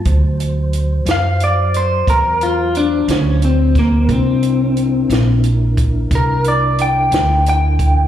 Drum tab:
HH |xxxxxxxxxxxx|xxxxxxxxxxxx|
SD |---o-----o-o|---o-----o--|
BD |o-----o----o|o----oo----o|